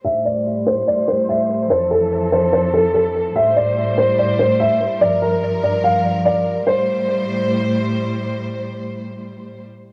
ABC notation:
X:1
M:4/4
L:1/8
Q:1/4=145
K:Aphr
V:1 name="Grand piano"
e d2 c d c e2 | c A2 c c A A2 | e d2 c d c e2 | d B2 d f2 d2 |
c6 z2 | z8 |]
V:2 name="String section" clef=bass
[A,,G,c]8 | [F,,E,A]8 | [A,,G,c]8 | [G,,F,B]8 |
[A,,G,c]8- | [A,,G,c]8 |]